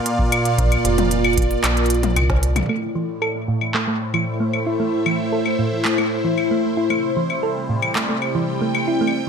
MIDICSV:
0, 0, Header, 1, 5, 480
1, 0, Start_track
1, 0, Tempo, 526316
1, 536, Time_signature, 4, 2, 24, 8
1, 8472, End_track
2, 0, Start_track
2, 0, Title_t, "Analog synth pad"
2, 0, Program_c, 0, 89
2, 0, Note_on_c, 0, 46, 95
2, 0, Note_on_c, 0, 58, 75
2, 0, Note_on_c, 0, 65, 71
2, 0, Note_on_c, 0, 74, 89
2, 0, Note_on_c, 0, 77, 77
2, 2456, Note_off_c, 0, 58, 0
2, 2456, Note_off_c, 0, 65, 0
2, 2456, Note_off_c, 0, 77, 0
2, 2457, Note_off_c, 0, 46, 0
2, 2457, Note_on_c, 0, 45, 83
2, 2670, Note_on_c, 0, 57, 81
2, 2684, Note_on_c, 0, 64, 81
2, 3476, Note_on_c, 0, 72, 73
2, 3702, Note_on_c, 0, 76, 87
2, 3991, Note_off_c, 0, 74, 0
2, 6296, Note_off_c, 0, 45, 0
2, 6297, Note_off_c, 0, 57, 0
2, 6300, Note_on_c, 0, 48, 89
2, 6501, Note_on_c, 0, 55, 73
2, 7001, Note_on_c, 0, 79, 86
2, 7832, Note_off_c, 0, 76, 0
2, 8472, Note_off_c, 0, 48, 0
2, 8472, Note_off_c, 0, 55, 0
2, 8472, Note_off_c, 0, 64, 0
2, 8472, Note_off_c, 0, 72, 0
2, 8472, Note_off_c, 0, 79, 0
2, 8472, End_track
3, 0, Start_track
3, 0, Title_t, "Synth arpeggio sound"
3, 0, Program_c, 1, 84
3, 2454, Note_on_c, 1, 57, 82
3, 2522, Note_off_c, 1, 57, 0
3, 2694, Note_on_c, 1, 52, 74
3, 2762, Note_off_c, 1, 52, 0
3, 2934, Note_on_c, 1, 69, 78
3, 3002, Note_off_c, 1, 69, 0
3, 3176, Note_on_c, 1, 45, 74
3, 3243, Note_off_c, 1, 45, 0
3, 3416, Note_on_c, 1, 57, 85
3, 3483, Note_off_c, 1, 57, 0
3, 3535, Note_on_c, 1, 57, 73
3, 3603, Note_off_c, 1, 57, 0
3, 3775, Note_on_c, 1, 52, 97
3, 3843, Note_off_c, 1, 52, 0
3, 4014, Note_on_c, 1, 57, 72
3, 4116, Note_off_c, 1, 57, 0
3, 4255, Note_on_c, 1, 64, 74
3, 4356, Note_off_c, 1, 64, 0
3, 4375, Note_on_c, 1, 57, 80
3, 4443, Note_off_c, 1, 57, 0
3, 4616, Note_on_c, 1, 52, 77
3, 4683, Note_off_c, 1, 52, 0
3, 4856, Note_on_c, 1, 69, 80
3, 4923, Note_off_c, 1, 69, 0
3, 5097, Note_on_c, 1, 45, 74
3, 5163, Note_off_c, 1, 45, 0
3, 5337, Note_on_c, 1, 57, 84
3, 5404, Note_off_c, 1, 57, 0
3, 5458, Note_on_c, 1, 57, 68
3, 5524, Note_off_c, 1, 57, 0
3, 5696, Note_on_c, 1, 52, 101
3, 5763, Note_off_c, 1, 52, 0
3, 5937, Note_on_c, 1, 57, 72
3, 6037, Note_off_c, 1, 57, 0
3, 6176, Note_on_c, 1, 64, 79
3, 6277, Note_off_c, 1, 64, 0
3, 6296, Note_on_c, 1, 57, 80
3, 6363, Note_off_c, 1, 57, 0
3, 6536, Note_on_c, 1, 52, 79
3, 6603, Note_off_c, 1, 52, 0
3, 6777, Note_on_c, 1, 69, 76
3, 6843, Note_off_c, 1, 69, 0
3, 7017, Note_on_c, 1, 45, 76
3, 7084, Note_off_c, 1, 45, 0
3, 7256, Note_on_c, 1, 57, 84
3, 7323, Note_off_c, 1, 57, 0
3, 7377, Note_on_c, 1, 57, 70
3, 7444, Note_off_c, 1, 57, 0
3, 7616, Note_on_c, 1, 52, 103
3, 7683, Note_off_c, 1, 52, 0
3, 7856, Note_on_c, 1, 57, 73
3, 7956, Note_off_c, 1, 57, 0
3, 8096, Note_on_c, 1, 64, 76
3, 8197, Note_off_c, 1, 64, 0
3, 8216, Note_on_c, 1, 57, 81
3, 8283, Note_off_c, 1, 57, 0
3, 8472, End_track
4, 0, Start_track
4, 0, Title_t, "FM bass"
4, 0, Program_c, 2, 39
4, 535, Note_on_c, 2, 34, 89
4, 705, Note_off_c, 2, 34, 0
4, 774, Note_on_c, 2, 29, 91
4, 1439, Note_off_c, 2, 29, 0
4, 1495, Note_on_c, 2, 34, 79
4, 1968, Note_off_c, 2, 34, 0
4, 1974, Note_on_c, 2, 36, 96
4, 2399, Note_off_c, 2, 36, 0
4, 8472, End_track
5, 0, Start_track
5, 0, Title_t, "Drums"
5, 54, Note_on_c, 9, 42, 80
5, 145, Note_off_c, 9, 42, 0
5, 175, Note_on_c, 9, 36, 103
5, 266, Note_off_c, 9, 36, 0
5, 293, Note_on_c, 9, 42, 76
5, 293, Note_on_c, 9, 75, 80
5, 385, Note_off_c, 9, 42, 0
5, 385, Note_off_c, 9, 75, 0
5, 414, Note_on_c, 9, 42, 53
5, 505, Note_off_c, 9, 42, 0
5, 534, Note_on_c, 9, 42, 83
5, 535, Note_on_c, 9, 36, 121
5, 625, Note_off_c, 9, 42, 0
5, 626, Note_off_c, 9, 36, 0
5, 655, Note_on_c, 9, 42, 39
5, 655, Note_on_c, 9, 75, 57
5, 746, Note_off_c, 9, 42, 0
5, 746, Note_off_c, 9, 75, 0
5, 774, Note_on_c, 9, 42, 83
5, 866, Note_off_c, 9, 42, 0
5, 895, Note_on_c, 9, 42, 54
5, 895, Note_on_c, 9, 48, 96
5, 987, Note_off_c, 9, 42, 0
5, 987, Note_off_c, 9, 48, 0
5, 1014, Note_on_c, 9, 42, 78
5, 1105, Note_off_c, 9, 42, 0
5, 1135, Note_on_c, 9, 42, 15
5, 1135, Note_on_c, 9, 75, 76
5, 1215, Note_off_c, 9, 42, 0
5, 1215, Note_on_c, 9, 42, 23
5, 1226, Note_off_c, 9, 75, 0
5, 1254, Note_off_c, 9, 42, 0
5, 1254, Note_on_c, 9, 42, 79
5, 1255, Note_on_c, 9, 36, 105
5, 1295, Note_off_c, 9, 42, 0
5, 1295, Note_on_c, 9, 42, 27
5, 1346, Note_off_c, 9, 36, 0
5, 1375, Note_off_c, 9, 42, 0
5, 1375, Note_on_c, 9, 42, 53
5, 1466, Note_off_c, 9, 42, 0
5, 1495, Note_on_c, 9, 39, 127
5, 1495, Note_on_c, 9, 42, 88
5, 1495, Note_on_c, 9, 75, 59
5, 1586, Note_off_c, 9, 39, 0
5, 1586, Note_off_c, 9, 42, 0
5, 1586, Note_off_c, 9, 75, 0
5, 1614, Note_on_c, 9, 42, 36
5, 1695, Note_off_c, 9, 42, 0
5, 1695, Note_on_c, 9, 42, 29
5, 1734, Note_off_c, 9, 42, 0
5, 1734, Note_on_c, 9, 42, 82
5, 1773, Note_off_c, 9, 42, 0
5, 1773, Note_on_c, 9, 42, 24
5, 1854, Note_off_c, 9, 42, 0
5, 1854, Note_on_c, 9, 42, 54
5, 1854, Note_on_c, 9, 48, 95
5, 1945, Note_off_c, 9, 42, 0
5, 1945, Note_off_c, 9, 48, 0
5, 1974, Note_on_c, 9, 42, 86
5, 1974, Note_on_c, 9, 75, 89
5, 2065, Note_off_c, 9, 42, 0
5, 2065, Note_off_c, 9, 75, 0
5, 2095, Note_on_c, 9, 36, 106
5, 2095, Note_on_c, 9, 38, 64
5, 2186, Note_off_c, 9, 36, 0
5, 2186, Note_off_c, 9, 38, 0
5, 2215, Note_on_c, 9, 42, 76
5, 2306, Note_off_c, 9, 42, 0
5, 2335, Note_on_c, 9, 42, 54
5, 2335, Note_on_c, 9, 45, 39
5, 2335, Note_on_c, 9, 48, 87
5, 2335, Note_on_c, 9, 75, 53
5, 2365, Note_off_c, 9, 45, 0
5, 2365, Note_on_c, 9, 45, 49
5, 2395, Note_off_c, 9, 45, 0
5, 2395, Note_on_c, 9, 45, 58
5, 2425, Note_off_c, 9, 45, 0
5, 2425, Note_on_c, 9, 45, 72
5, 2426, Note_off_c, 9, 42, 0
5, 2426, Note_off_c, 9, 48, 0
5, 2426, Note_off_c, 9, 75, 0
5, 2455, Note_on_c, 9, 75, 52
5, 2516, Note_off_c, 9, 45, 0
5, 2547, Note_off_c, 9, 75, 0
5, 2935, Note_on_c, 9, 75, 75
5, 3026, Note_off_c, 9, 75, 0
5, 3295, Note_on_c, 9, 75, 50
5, 3386, Note_off_c, 9, 75, 0
5, 3415, Note_on_c, 9, 39, 116
5, 3506, Note_off_c, 9, 39, 0
5, 3775, Note_on_c, 9, 75, 77
5, 3866, Note_off_c, 9, 75, 0
5, 4135, Note_on_c, 9, 75, 51
5, 4226, Note_off_c, 9, 75, 0
5, 4615, Note_on_c, 9, 75, 77
5, 4706, Note_off_c, 9, 75, 0
5, 4975, Note_on_c, 9, 75, 50
5, 5066, Note_off_c, 9, 75, 0
5, 5334, Note_on_c, 9, 39, 124
5, 5425, Note_off_c, 9, 39, 0
5, 5455, Note_on_c, 9, 75, 74
5, 5546, Note_off_c, 9, 75, 0
5, 5815, Note_on_c, 9, 75, 53
5, 5906, Note_off_c, 9, 75, 0
5, 6295, Note_on_c, 9, 75, 77
5, 6386, Note_off_c, 9, 75, 0
5, 6656, Note_on_c, 9, 75, 45
5, 6747, Note_off_c, 9, 75, 0
5, 7136, Note_on_c, 9, 75, 76
5, 7227, Note_off_c, 9, 75, 0
5, 7255, Note_on_c, 9, 39, 127
5, 7346, Note_off_c, 9, 39, 0
5, 7495, Note_on_c, 9, 75, 50
5, 7587, Note_off_c, 9, 75, 0
5, 7977, Note_on_c, 9, 75, 71
5, 8068, Note_off_c, 9, 75, 0
5, 8276, Note_on_c, 9, 75, 48
5, 8367, Note_off_c, 9, 75, 0
5, 8472, End_track
0, 0, End_of_file